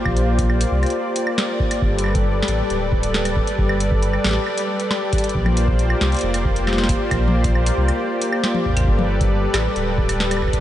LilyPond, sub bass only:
\new Staff \with { instrumentName = "Sub bass" } { \clef bass \time 4/4 \key bes \major \tempo 4 = 136 bes,,4. c,8 r2 | g,,4. a,,8 d,,4. r8 | g,,4. a,,8 r2 | bes,,4. c,8 f,,4. r8 |
bes,,4. c,8 r2 | g,,4. a,,8 d,,4. r8 | }